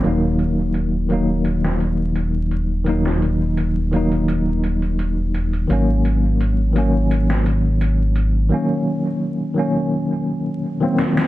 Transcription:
<<
  \new Staff \with { instrumentName = "Tine electric piano" } { \clef bass \time 4/4 \key ees \minor \tempo 4 = 85 <ees ges bes ees'>4. <ees ges bes ees'>2~ <ees ges bes ees'>8 | <ees ges bes ees'>4. <ees ges bes ees'>2~ <ees ges bes ees'>8 | <ees ges bes des'>4. <ees ges bes des'>2~ <ees ges bes des'>8 | <ees ges bes des'>4. <ees ges bes des'>4.~ <ees ges bes des'>16 <ees ges bes c'>8. | }
  \new Staff \with { instrumentName = "Detuned saw bass" } { \clef bass \time 4/4 \key ees \minor ees,,1~ | ees,,1 | aes,,1 | r1 | }
  \new DrumStaff \with { instrumentName = "Drums" } \drummode { \time 4/4 hh8 hh8 hh8 hh8 hh16 sn16 hh8 hh8 hh8 | hh16 sn16 hh8 hh8 hh16 hh16 hh8 hh16 hh16 hh8 hh16 hh16 | hh8 hh8 hh8 hh8 hh16 sn16 hh8 hh8 hh8 | r4 r4 r4 r8 sn16 sn16 | }
>>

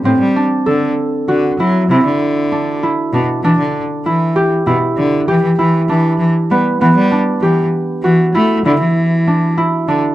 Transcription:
<<
  \new Staff \with { instrumentName = "Harp" } { \time 11/8 \key e \minor \tempo 4 = 98 c'8 d'8 a'4 fis'8 e'8 e'4 d'8 e'8 d'8 | d'4 e'8 g'8 e'4 g'8 e'8 d'4 b8 | b8 d'8 g'4 fis'8 e'8 e'4 d'8 e'8 d'8 | }
  \new Staff \with { instrumentName = "Cello" } { \clef bass \time 11/8 \key e \minor a,16 g8 r16 d8 r8 d8 fis8 c16 d4.~ d16 b,16 r16 | e16 d8 r16 e4 b,16 r16 d8 e16 e16 e8 e8 e16 r16 g16 r16 | e16 g8 r16 e8 r8 e8 a8 d16 e4.~ e16 d16 r16 | }
>>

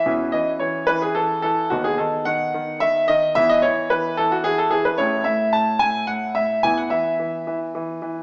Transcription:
<<
  \new Staff \with { instrumentName = "Grand piano" } { \time 3/4 \key e \major \tempo 4 = 109 << { e''8 dis''8 cis''8 b'16 gis'16 a'8 a'8 | fis'16 gis'16 a'8 fis''4 e''8 dis''8 | e''16 dis''16 cis''8 b'8 a'16 fis'16 gis'16 a'16 gis'16 b'16 | cis''8 e''8 a''8 gis''8 fis''8 e''8 |
gis''16 fis''16 e''2 r8 | } \\ { <cis' fis'>2. | b2. | <b e'>2. | <a e'>2. |
<b e'>2. | } >> }
  \new Staff \with { instrumentName = "Grand piano" } { \clef bass \time 3/4 \key e \major <e, e>8 e8 e8 e8 e8 e8 | <dis, dis>8 dis8 dis8 dis8 dis8 dis8 | <e, e>8 e8 e8 e8 e8 e8 | <a,, a,>8 a,8 a,8 a,8 a,8 a,8 |
<e, e>8 e8 e8 e8 e8 e8 | }
>>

